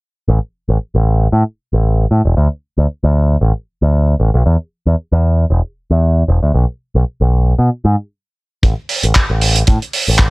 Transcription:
0.28 A1
0.69 A1
0.95 A1
1.32 A2
1.73 A1
2.11 A2
2.25 E1
2.37 D2
2.78 D2
3.04 D2
3.41 A1
3.82 D2
4.20 A1
4.34 B1
4.46 E2
4.86 E2
5.12 E2
5.50 E1
5.91 E2
6.28 E1
6.43 D2
6.54 B1
6.95 B1
7.21 B1
7.59 B2
7.85 G#2
8.63 A1, kick, closed hi-hat
8.89 open hi-hat
9.03 A1, closed hi-hat
9.15 kick, clap, closed hi-hat
9.30 A1
9.41 open hi-hat
9.56 closed hi-hat
9.67 A2, kick, closed hi-hat
9.82 closed hi-hat
9.93 open hi-hat
10.08 A1
10.18 kick, clap

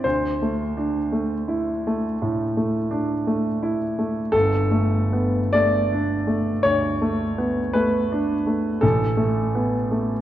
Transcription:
0.04 D2 C5
0.42 A3
0.77 D4
1.12 A3
1.48 E4
1.87 A3
2.22 A2
2.57 A3
2.91 D4
3.27 A3
3.63 E4
3.99 A3
4.32 G1 A4
4.71 A3
5.13 B3
5.53 A3 D5
5.92 D4
6.27 A3
6.63 D2 C#5
7.02 A3
7.38 B3
7.73 A3 B4
8.12 D4
8.47 A3
8.81 A1 A4
9.17 A3
9.55 B3
9.91 A3

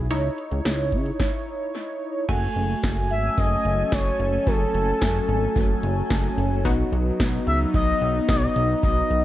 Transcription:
Already playing: B1
0.11 C#2 D#4 E4 C#5, closed hi-hat
0.38 closed hi-hat
0.51 C#2, closed hi-hat
0.65 C#2, snare, closed hi-hat
0.92 C#3, kick, closed hi-hat
1.06 closed hi-hat
1.20 kick, snare
2.29 F#1 F#3 A3 C#4 F#4 A4 G#5, kick, closed hi-hat, crash
2.56 F#1, closed hi-hat
2.83 F#1, kick, snare, closed hi-hat
3.10 G#1 E5, closed hi-hat
3.38 F#1 D#5, kick, closed hi-hat
3.65 F#1, closed hi-hat
3.92 F#1 C#5, kick, snare, closed hi-hat
4.20 F#1, closed hi-hat
4.47 F#1 A4, kick, closed hi-hat
4.74 F#1, closed hi-hat
5.01 F#1, kick, snare, closed hi-hat
5.29 G#1, closed hi-hat
5.56 F#1, kick, closed hi-hat
5.83 F#1, closed hi-hat
6.10 F#1, kick, snare, closed hi-hat
6.38 F#1, closed hi-hat
6.65 B1 B3 D#4 F#4, kick, closed hi-hat
6.92 B1, closed hi-hat
7.20 B1, kick, snare, closed hi-hat
7.47 C#2 E5, closed hi-hat
7.74 B1 D#5, kick, closed hi-hat
8.01 B1, closed hi-hat
8.29 B1 D#5, kick, snare, closed hi-hat
8.36 C#5
8.43 D#5
8.56 B1, closed hi-hat
8.83 B1 D#5, kick, closed hi-hat
9.11 B1, closed hi-hat

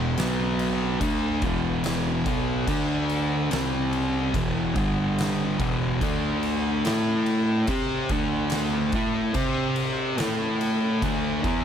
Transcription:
Already playing: E1 E2 B2 E3
0.17 B1 B2 F#3 B3, snare, crash
0.59 crash
1.01 D2 D3 A3 D4, kick, crash
1.42 E1 E2 B2 E3, kick, crash
1.84 snare, crash
2.25 B1 B2 F#3 B3, kick, crash
2.67 D2 D3 A3 D4, kick, crash
3.09 crash
3.51 C2 C3 G3 C4, snare, crash
3.93 crash
4.34 E1 E2 B2 E3, kick, crash
4.75 G1 G2 D3 G3, kick, crash
5.18 snare, crash
5.60 E1 E2 B2 E3, kick, crash
6.01 D2 D3 A3 D4, kick, crash
6.43 crash
6.85 A2 A3 E4 A4, snare, crash
7.26 crash
7.67 C3 C4 G4 C5, kick, crash
8.09 D2 D3 A3 D4, kick, crash
8.50 snare, crash
8.92 A2 A3 E4 A4, kick, crash
9.34 C3 C4 G4 C5, kick, crash
9.76 crash
10.18 A2 A3 E4 A4, snare, crash
10.61 crash
11.02 D2 D3 A3 D4, kick, crash
11.44 E2 E3 B3 E4, kick, crash

